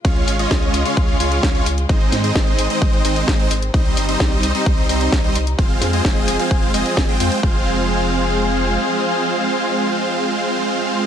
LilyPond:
<<
  \new Staff \with { instrumentName = "Supersaw synth" } { \time 4/4 \key f \minor \tempo 4 = 130 <aes des' f' des'' f''>8. <aes des' f' des'' ees''>4 <aes des' f' des'' f''>8. <aes des' f' des'' f''>8. <aes des' f' des'' f''>16 r8 | <aes c' ees' c'' ees''>8. <aes c' ees' c'' ees''>4 <aes c' ees' c'' ees''>8. <aes c' ees' c'' ees''>8. <aes c' ees' c'' ees''>16 r8 | <g c' ees' c'' ees''>8. <g c' ees' c'' ees''>4 <g c' ees' c'' ees''>8. <g c' ees' c'' ees''>8. <g c' ees' c'' ees''>16 r8 | <aes c' f' c'' f''>8. <aes c' f' c'' ees''>4 <aes c' f' c'' f''>8. <aes c' f' c'' ees''>8. <aes c' f' c'' g''>16 <aes c' f' c'' g''>8 |
<aes c' f' c''>1~ | <aes c' f' c''>1 | }
  \new Staff \with { instrumentName = "String section" } { \time 4/4 \key f \minor << { <des f'>1 | <ees c'>1 | <c ees'>1 | <f aes'>1 |
<f c' aes'>1~ | <f c' aes'>1 | } \\ { aes1~ | aes1 | g1 | c'1 |
r1 | r1 | } >> }
  \new Staff \with { instrumentName = "Sub bass" } { \clef bass \time 4/4 \key f \minor des,8 aes,,8 des,8 des,8 des,8 des,8 des,8 des,8 | aes,,8 aes,8 aes,,8 aes,,8 aes,,8 aes,,8 aes,,8 aes,,8 | c,8 g,,8 c,8 c,8 c,8 c,8 c,8 c,8 | f,,8 f,8 f,,8 f,,8 f,,8 f,,8 f,,8 f,8 |
f,,2. r4 | r1 | }
  \new DrumStaff \with { instrumentName = "Drums" } \drummode { \time 4/4 <hh bd>16 hh16 hho16 hh16 <hh bd sn>16 hh16 hho16 hh16 <hh bd>16 hh16 hho16 hh16 <hh bd sn>16 hh16 hho16 hh16 | <hh bd>16 hh16 <hho sn>16 hh16 <hh bd sn>16 hh16 hho16 hh16 <hh bd>16 hh16 hho16 hh16 <hh bd sn>16 hh16 hho16 hh16 | <hh bd>16 hh16 hho16 hh16 <hh bd sn>16 hh16 hho16 hh16 <hh bd>16 hh16 hho16 hh16 <hh bd sn>16 hh16 hho16 hh16 | <hh bd>16 hh16 <hho sn>16 hh16 <hh bd sn>16 hh16 hho16 hh16 <hh bd>16 hh16 hho16 hh16 <hh bd sn>16 hh16 hho16 hh16 |
bd4 r4 r4 r4 | r4 r4 r4 r4 | }
>>